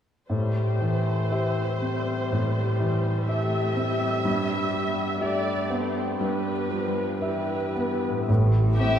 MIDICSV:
0, 0, Header, 1, 8, 480
1, 0, Start_track
1, 0, Key_signature, 0, "minor"
1, 0, Tempo, 1008403
1, 145, Time_signature, 4, 2, 24, 8
1, 1103, Tempo, 974026
1, 3023, Tempo, 1032702
1, 4314, End_track
2, 0, Start_track
2, 0, Title_t, "Violin section"
2, 0, Program_c, 0, 48
2, 4221, Note_on_c, 0, 76, 34
2, 4314, Note_off_c, 0, 76, 0
2, 4314, End_track
3, 0, Start_track
3, 0, Title_t, "Harp"
3, 0, Program_c, 1, 46
3, 145, Note_on_c, 1, 45, 30
3, 304, Note_on_c, 1, 67, 26
3, 467, Note_on_c, 1, 60, 26
3, 623, Note_off_c, 1, 67, 0
3, 629, Note_on_c, 1, 67, 28
3, 789, Note_on_c, 1, 76, 27
3, 943, Note_off_c, 1, 67, 0
3, 949, Note_on_c, 1, 67, 25
3, 1100, Note_on_c, 1, 52, 25
3, 1254, Note_off_c, 1, 67, 0
3, 1260, Note_on_c, 1, 67, 28
3, 1415, Note_off_c, 1, 60, 0
3, 1421, Note_on_c, 1, 60, 32
3, 1569, Note_off_c, 1, 67, 0
3, 1575, Note_on_c, 1, 67, 29
3, 1726, Note_off_c, 1, 76, 0
3, 1732, Note_on_c, 1, 76, 30
3, 1886, Note_off_c, 1, 67, 0
3, 1892, Note_on_c, 1, 67, 35
3, 2033, Note_off_c, 1, 45, 0
3, 2053, Note_on_c, 1, 43, 38
3, 2078, Note_off_c, 1, 52, 0
3, 2079, Note_off_c, 1, 60, 0
3, 2207, Note_off_c, 1, 67, 0
3, 2212, Note_on_c, 1, 67, 35
3, 2372, Note_on_c, 1, 59, 35
3, 2522, Note_off_c, 1, 67, 0
3, 2528, Note_on_c, 1, 67, 37
3, 2686, Note_off_c, 1, 76, 0
3, 2692, Note_on_c, 1, 76, 39
3, 2844, Note_off_c, 1, 67, 0
3, 2850, Note_on_c, 1, 67, 33
3, 3007, Note_off_c, 1, 43, 0
3, 3012, Note_on_c, 1, 43, 35
3, 3167, Note_off_c, 1, 59, 0
3, 3172, Note_on_c, 1, 59, 32
3, 3329, Note_on_c, 1, 55, 31
3, 3484, Note_off_c, 1, 67, 0
3, 3489, Note_on_c, 1, 67, 29
3, 3644, Note_off_c, 1, 76, 0
3, 3650, Note_on_c, 1, 76, 29
3, 3809, Note_off_c, 1, 67, 0
3, 3815, Note_on_c, 1, 67, 28
3, 3893, Note_on_c, 1, 45, 33
3, 3915, Note_on_c, 1, 60, 28
3, 3931, Note_off_c, 1, 67, 0
3, 3936, Note_on_c, 1, 67, 29
3, 3952, Note_off_c, 1, 76, 0
3, 3957, Note_on_c, 1, 76, 29
3, 4001, Note_off_c, 1, 43, 0
3, 4002, Note_off_c, 1, 59, 0
3, 4314, Note_off_c, 1, 45, 0
3, 4314, Note_off_c, 1, 55, 0
3, 4314, Note_off_c, 1, 60, 0
3, 4314, Note_off_c, 1, 67, 0
3, 4314, Note_off_c, 1, 76, 0
3, 4314, End_track
4, 0, Start_track
4, 0, Title_t, "Violin section"
4, 0, Program_c, 2, 48
4, 4220, Note_on_c, 2, 67, 32
4, 4314, Note_off_c, 2, 67, 0
4, 4314, End_track
5, 0, Start_track
5, 0, Title_t, "Felt piano"
5, 0, Program_c, 3, 0
5, 141, Note_on_c, 3, 45, 27
5, 236, Control_c, 3, 64, 127
5, 385, Note_on_c, 3, 52, 23
5, 625, Note_on_c, 3, 67, 23
5, 627, Note_on_c, 3, 76, 25
5, 772, Note_off_c, 3, 52, 0
5, 847, Note_off_c, 3, 67, 0
5, 848, Note_off_c, 3, 76, 0
5, 864, Note_on_c, 3, 60, 26
5, 1082, Note_off_c, 3, 45, 0
5, 1102, Note_on_c, 3, 45, 30
5, 1245, Note_off_c, 3, 60, 0
5, 1340, Note_on_c, 3, 52, 27
5, 1578, Note_on_c, 3, 67, 29
5, 1582, Note_on_c, 3, 76, 30
5, 1722, Note_off_c, 3, 52, 0
5, 1799, Note_off_c, 3, 67, 0
5, 1801, Note_off_c, 3, 76, 0
5, 1813, Note_on_c, 3, 60, 34
5, 2040, Note_off_c, 3, 45, 0
5, 2054, Note_on_c, 3, 43, 39
5, 2057, Note_off_c, 3, 60, 0
5, 2069, Control_c, 3, 64, 0
5, 2148, Control_c, 3, 64, 127
5, 2295, Note_on_c, 3, 55, 27
5, 2529, Note_on_c, 3, 76, 35
5, 2531, Note_on_c, 3, 67, 29
5, 2677, Note_off_c, 3, 55, 0
5, 2753, Note_off_c, 3, 67, 0
5, 2753, Note_off_c, 3, 76, 0
5, 2772, Note_on_c, 3, 59, 35
5, 2998, Note_off_c, 3, 43, 0
5, 3019, Note_on_c, 3, 43, 34
5, 3160, Note_off_c, 3, 59, 0
5, 3257, Note_on_c, 3, 55, 30
5, 3490, Note_on_c, 3, 76, 31
5, 3491, Note_on_c, 3, 67, 27
5, 3641, Note_off_c, 3, 55, 0
5, 3720, Note_off_c, 3, 67, 0
5, 3720, Note_off_c, 3, 76, 0
5, 3740, Note_on_c, 3, 59, 28
5, 3966, Note_off_c, 3, 43, 0
5, 3985, Note_off_c, 3, 59, 0
5, 3987, Note_on_c, 3, 45, 36
5, 3995, Control_c, 3, 64, 0
5, 4086, Control_c, 3, 64, 127
5, 4224, Note_on_c, 3, 60, 27
5, 4314, Note_off_c, 3, 45, 0
5, 4314, Note_off_c, 3, 60, 0
5, 4314, End_track
6, 0, Start_track
6, 0, Title_t, "Viola section"
6, 0, Program_c, 4, 48
6, 140, Note_on_c, 4, 55, 32
6, 142, Note_on_c, 4, 72, 31
6, 369, Note_off_c, 4, 55, 0
6, 385, Note_on_c, 4, 57, 37
6, 629, Note_off_c, 4, 57, 0
6, 631, Note_on_c, 4, 52, 33
6, 869, Note_off_c, 4, 52, 0
6, 869, Note_on_c, 4, 55, 34
6, 1559, Note_off_c, 4, 72, 0
6, 1567, Note_off_c, 4, 55, 0
6, 1577, Note_on_c, 4, 57, 41
6, 1577, Note_on_c, 4, 76, 43
6, 1818, Note_off_c, 4, 57, 0
6, 1821, Note_on_c, 4, 55, 43
6, 2051, Note_off_c, 4, 55, 0
6, 2057, Note_on_c, 4, 55, 39
6, 2524, Note_off_c, 4, 55, 0
6, 2534, Note_off_c, 4, 76, 0
6, 2537, Note_on_c, 4, 57, 40
6, 2539, Note_on_c, 4, 74, 44
6, 2773, Note_off_c, 4, 74, 0
6, 2774, Note_on_c, 4, 60, 45
6, 3019, Note_on_c, 4, 55, 39
6, 3021, Note_off_c, 4, 60, 0
6, 3021, Note_on_c, 4, 71, 40
6, 3022, Note_off_c, 4, 57, 0
6, 3250, Note_off_c, 4, 55, 0
6, 3254, Note_on_c, 4, 53, 40
6, 3485, Note_off_c, 4, 71, 0
6, 3491, Note_on_c, 4, 71, 37
6, 3493, Note_off_c, 4, 53, 0
6, 3493, Note_on_c, 4, 52, 39
6, 3880, Note_off_c, 4, 71, 0
6, 3881, Note_off_c, 4, 52, 0
6, 4219, Note_on_c, 4, 60, 38
6, 4314, Note_off_c, 4, 60, 0
6, 4314, End_track
7, 0, Start_track
7, 0, Title_t, "Cello section"
7, 0, Program_c, 5, 48
7, 3985, Note_on_c, 5, 45, 42
7, 4314, Note_off_c, 5, 45, 0
7, 4314, End_track
8, 0, Start_track
8, 0, Title_t, "Double bass section"
8, 0, Program_c, 6, 48
8, 3980, Note_on_c, 6, 33, 45
8, 4314, Note_off_c, 6, 33, 0
8, 4314, End_track
0, 0, End_of_file